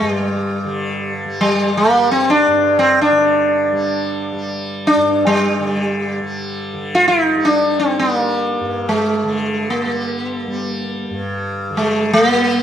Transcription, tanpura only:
0.00 2.47 G2 medium
0.00 0.64 D3 medium
0.00 1.25 G3 soft
0.64 3.09 D3 medium
1.25 1.87 G3 medium
1.87 3.72 G3 medium
2.47 4.96 G2 medium
3.10 5.58 D3 medium
3.72 4.33 G3 medium
4.33 6.22 G3 medium
4.96 8.60 G2 soft
5.59 6.74 D3 medium
6.22 7.36 G3 medium
6.74 9.23 D3 medium
7.36 8.00 G3 medium
8.00 9.85 G3 medium
8.60 11.10 G2 soft
9.23 11.70 D3 medium
9.85 10.47 G3 medium
10.47 12.33 G3 medium
11.10 12.63 G2 medium
11.70 12.63 D3 medium
12.33 12.63 G3 medium

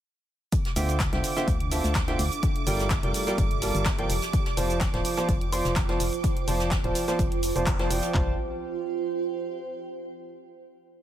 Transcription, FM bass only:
0.76 1.10 D2 loud
1.13 1.22 C2 loud
1.48 1.81 D2 loud
1.84 2.16 D2 medium
2.19 2.30 D2 medium
2.67 3.00 G1 loud
3.03 3.13 F1 loud
3.38 3.72 G1 loud
3.75 4.07 G1 medium
4.10 4.20 F1 medium
4.57 4.91 F1 loud
4.94 5.03 D1 loud
5.29 5.62 F1 loud
5.65 5.97 F1 medium
6.00 6.11 F1 medium
6.48 6.81 F1 loud
6.84 6.94 D1 loud
7.19 7.53 F1 loud
7.56 7.88 F1 medium
7.91 8.01 F1 medium
8.14 8.37 F1 loud

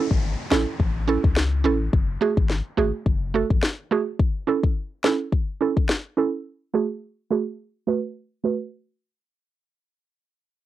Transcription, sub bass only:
0.11 0.35 G#1 medium
0.51 0.65 A1 medium
0.80 1.17 A1 loud
1.24 1.66 C#2 medium
1.65 1.89 A1 medium
1.93 2.17 F#1 loud
2.37 2.61 G#1 medium
2.78 2.92 G#1 medium
3.06 3.44 F#1 medium
3.50 3.61 G#1 medium

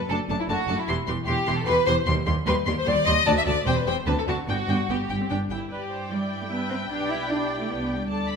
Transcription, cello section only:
0.10 0.17 F#2 medium
0.29 0.37 F#2 medium
0.49 0.57 F#2 medium
0.68 0.76 F#2 medium
0.88 0.96 E2 medium
1.07 1.15 E2 medium
1.27 1.35 E2 medium
1.47 1.55 E2 medium
1.67 1.74 E2 medium
1.87 1.95 E2 medium
2.07 2.14 D#2 medium
2.26 2.34 D#2 medium
2.47 2.55 D#2 medium
2.66 2.74 D#2 medium
2.86 2.94 D#2 medium
3.06 3.14 D#2 medium
3.27 3.34 D2 medium
3.46 3.54 D2 medium
3.66 3.74 E2 medium
3.86 3.94 E2 medium
4.07 4.15 D2 medium
4.27 4.35 D2 medium
4.48 4.56 G2 medium
4.69 4.77 G2 medium
4.89 4.97 G2 medium
5.10 5.18 G2 medium
5.30 5.38 G2 medium
5.51 5.59 G2 soft
6.11 6.19 G3 medium
6.42 6.46 A3 soft
6.51 6.59 B3 medium
6.71 6.79 C4 medium
6.90 7.10 D4 medium
7.11 7.30 E4 medium
7.30 7.59 D4 medium
7.60 7.69 A3 soft
7.69 7.99 B3 medium
7.99 8.09 G3 soft

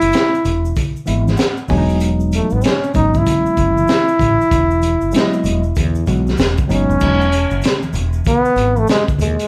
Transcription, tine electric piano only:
1.06 1.31 E3 medium
1.06 1.31 G#3 medium
1.06 1.32 B3 medium
1.06 1.32 E4 medium
1.06 1.36 E5 medium
1.37 1.67 F#5 medium
1.69 2.71 F#3 loud
1.69 2.72 G#3 medium
1.69 2.72 B3 medium
1.69 1.79 D4 medium
1.69 1.99 G#5 medium
1.78 2.76 D#4 loud
2.94 3.84 F#3 medium
2.94 3.84 G#3 medium
2.94 3.84 B3 medium
2.94 3.85 C#4 medium
5.12 5.60 F#3 medium
5.12 5.60 G#3 medium
5.12 5.61 B3 medium
5.12 5.22 D4 medium
5.20 5.64 D#5 medium
6.06 6.31 F#3 medium
6.06 6.31 G#3 medium
6.06 6.32 B3 medium
6.06 6.32 F#4 medium
6.68 6.99 F#3 medium
6.68 6.99 G#3 medium
6.68 7.00 B3 medium
6.68 7.01 D#4 medium
7.00 7.25 F#3 medium
7.00 7.25 G#3 medium
7.00 7.25 B3 medium
7.00 7.26 D#4 medium

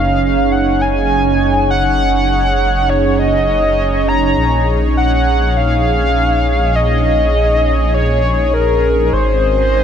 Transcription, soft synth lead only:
0.00 0.53 F5 loud
0.52 0.83 F#5 loud
0.81 1.70 G#5 loud
1.71 2.91 F#5 loud
2.89 3.19 C#5 loud
3.19 4.10 D#5 loud
4.08 4.68 A#5 loud
4.97 5.58 F#5 loud
5.57 6.77 F5 loud
6.76 7.94 D#5 loud
7.94 8.55 C#5 loud
8.54 9.15 A#4 medium
9.13 9.84 C5 loud

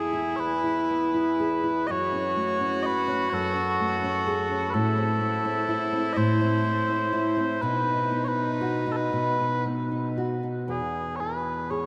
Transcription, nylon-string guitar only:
0.00 0.37 E2 medium
0.00 0.89 B3 soft
0.00 0.12 E4 medium
0.00 1.39 G#4 medium
0.13 0.63 E4 medium
0.38 1.88 E2 medium
0.64 1.13 E4 medium
0.90 1.98 B3 medium
1.14 1.62 E4 medium
1.40 2.39 G#4 medium
1.64 1.98 E4 medium
1.89 3.31 F#2 medium
2.12 2.59 C#4 medium
2.36 3.79 A3 medium
2.61 3.07 C#4 medium
3.08 3.55 C#4 medium
3.32 4.74 F#2 medium
3.56 4.02 C#4 medium
3.80 5.20 A3 medium
4.04 4.50 C#4 medium
4.27 4.84 G#4 medium
4.51 4.84 C#4 medium
4.74 6.15 A2 medium
4.97 5.44 C4 medium
5.21 6.63 A3 soft
5.45 5.91 C4 medium
5.69 7.12 E4 medium
5.93 6.40 C4 medium
6.16 7.62 A2 medium
6.41 6.87 C4 medium
6.65 7.72 A3 medium
6.88 7.36 C4 medium
7.13 7.72 E4 medium
7.37 7.72 C4 medium
7.62 9.12 B2 medium
7.86 8.35 D#4 medium
8.11 9.65 B3 medium
8.36 8.85 D#4 medium
8.61 10.16 F#4 medium
8.86 9.38 D#4 medium
9.13 10.79 B2 medium
9.39 9.90 D#4 medium
9.66 11.86 B3 soft
9.91 10.42 D#4 soft
10.18 10.79 F#4 medium
10.43 10.79 D#4 soft
10.68 11.86 E2 medium
11.20 11.86 E4 soft
11.71 11.86 G#4 soft

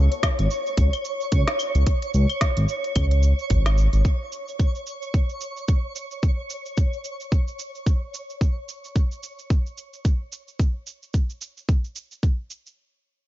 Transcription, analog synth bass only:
0.39 0.48 G#1 loud
0.78 0.90 C#2 medium
1.32 1.45 C#2 medium
1.75 1.84 C#2 medium
2.14 2.26 C#2 medium
2.57 2.66 G#1 loud
2.96 3.33 C#2 medium
3.51 3.88 G#1 medium
3.93 4.02 G#1 medium

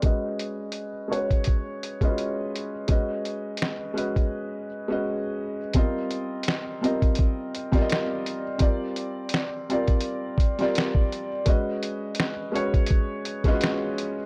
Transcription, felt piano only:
0.02 0.88 G#3 medium
0.02 0.89 C#4 medium
0.02 0.89 F#4 medium
0.02 0.90 B4 medium
0.02 0.90 D#5 medium
1.08 1.79 G#3 medium
1.08 1.80 C#4 medium
1.08 1.80 F#4 medium
1.08 1.81 B4 medium
1.08 1.81 C#5 medium
2.01 2.71 G#3 medium
2.01 2.72 C#4 medium
2.01 2.08 F4 medium
2.01 2.73 B4 medium
2.01 2.73 D#5 medium
2.09 2.75 F#4 medium
2.88 3.74 G#3 medium
2.88 3.74 C#4 medium
2.88 3.75 F#4 medium
2.88 3.75 B4 medium
2.88 3.76 D#5 medium
3.94 4.65 G#3 medium
3.94 4.66 C#4 medium
3.94 4.66 F#4 medium
3.94 4.67 B4 medium
3.98 4.67 D#5 medium
4.88 5.58 G#3 medium
4.88 5.58 C#4 medium
4.88 5.59 F#4 medium
4.88 5.59 B4 medium
4.92 5.60 D#5 medium
5.74 6.60 G3 medium
5.74 6.60 C4 medium
5.74 6.61 F4 medium
5.74 6.61 A#4 medium
5.78 6.62 D#5 medium
6.81 7.52 G3 medium
6.81 7.52 C4 medium
6.81 7.53 F4 medium
6.81 7.53 A#4 medium
6.85 7.54 D#5 medium
7.72 8.42 G3 loud
7.72 8.42 C4 medium
7.72 8.43 F4 medium
7.72 8.43 A#4 medium
7.72 7.80 D5 medium
7.82 8.47 D#5 loud
8.58 9.45 G3 medium
8.58 9.45 C4 medium
8.58 9.46 F4 medium
8.58 9.46 A#4 medium
8.58 9.46 D5 loud
9.69 10.39 G3 medium
9.69 10.39 C4 medium
9.69 10.40 F4 medium
9.69 10.40 A#4 medium
9.69 10.40 D5 medium
10.59 11.29 G3 loud
10.59 11.29 C4 medium
10.59 11.29 F4 medium
10.59 11.30 A#4 medium
10.59 11.30 D5 loud
11.45 12.31 G#3 medium
11.45 12.32 C#4 medium
11.45 12.32 F#4 medium
11.45 12.33 B4 medium
11.45 12.33 D#5 medium
12.52 13.23 G#3 medium
12.52 13.23 C#4 medium
12.52 13.24 F#4 medium
12.52 13.24 B4 medium
12.52 13.25 C#5 medium
13.45 14.14 G#3 loud
13.45 14.15 C#4 medium
13.45 13.51 F4 medium
13.45 14.16 B4 loud
13.45 14.16 D#5 loud
13.53 14.19 F#4 medium

